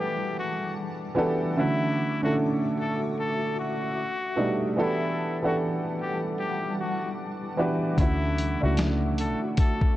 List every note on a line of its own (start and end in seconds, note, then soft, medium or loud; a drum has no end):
0.00 1.15 E3 medium
0.00 1.54 E3 medium
0.00 1.54 G3 medium
0.00 1.16 B3 medium
0.00 1.16 D4 medium
0.00 1.17 F#4 medium
0.00 0.35 G4 medium
0.00 1.18 G4 medium
0.00 1.60 G#4 medium
0.00 1.19 A4 medium
0.00 0.33 F#5 medium
0.00 1.53 F#5 medium
0.00 1.54 A5 medium
0.00 1.54 D6 medium
0.39 0.75 F#4 medium
1.15 1.51 E3 medium
1.15 1.52 B3 medium
1.15 1.52 D4 medium
1.15 1.52 F#4 medium
1.15 1.52 G4 medium
1.15 1.53 A4 loud
1.57 2.09 D3 medium
1.57 2.10 A3 medium
1.57 2.10 C#4 medium
1.57 2.19 E4 loud
1.57 2.10 E4 medium
1.57 3.95 F#4 medium
1.57 2.11 F#4 medium
1.57 3.95 E5 medium
1.57 3.95 C#6 medium
1.57 3.95 D6 medium
2.22 3.52 D3 medium
2.22 3.53 A3 medium
2.22 3.53 C#4 medium
2.22 3.54 E4 medium
2.22 2.37 F#4 medium
2.22 3.54 A4 medium
2.80 3.01 A4 medium
3.20 3.55 A4 medium
3.59 4.75 F#4 medium
3.98 4.77 A4 medium
3.98 4.77 A5 medium
3.98 4.77 B5 medium
3.98 4.78 D#6 medium
4.36 4.71 B2 medium
4.36 4.73 G3 medium
4.36 4.72 A3 medium
4.36 4.72 D4 medium
4.36 4.73 D#4 medium
4.76 5.29 E3 medium
4.76 7.95 E3 medium
4.76 7.95 G3 medium
4.76 5.30 B3 medium
4.76 5.30 D4 medium
4.76 5.30 F#4 medium
4.76 5.30 G4 medium
4.76 5.31 A4 loud
4.76 7.95 F#5 medium
4.76 7.95 A5 medium
4.76 9.97 D6 medium
4.81 5.40 E4 medium
5.42 6.73 E3 medium
5.42 6.73 B3 medium
5.42 6.73 D4 medium
5.42 5.58 F#4 medium
5.42 6.74 G4 medium
5.42 6.74 A4 medium
5.42 6.74 F#5 medium
6.01 6.22 G4 medium
6.40 6.75 G4 medium
6.80 7.15 F#4 medium
7.57 7.92 E3 medium
7.57 7.93 B3 medium
7.57 7.93 D4 medium
7.57 7.93 F#4 medium
7.57 7.94 G4 medium
7.57 7.94 B4 medium
7.98 8.55 D2 loud
7.98 8.50 D3 medium
7.98 8.51 A3 medium
7.98 8.51 C#4 medium
7.98 8.59 E4 loud
7.98 8.51 E4 medium
7.98 9.97 F#4 medium
7.98 8.51 F#4 medium
7.98 9.97 E5 medium
7.98 9.97 C#6 medium
7.98 kick loud
7.98 closed hi-hat medium
8.38 closed hi-hat medium
8.61 9.34 C#2 medium
8.61 9.92 A3 medium
8.61 9.92 C#4 medium
8.61 9.92 D4 medium
8.61 9.93 E4 medium
8.61 9.93 F#4 medium
8.61 8.77 F#4 medium
8.77 snare loud
8.77 closed hi-hat medium
9.18 9.41 A4 medium
9.18 closed hi-hat medium
9.57 9.95 A4 medium
9.57 kick medium
9.57 closed hi-hat medium
9.81 kick medium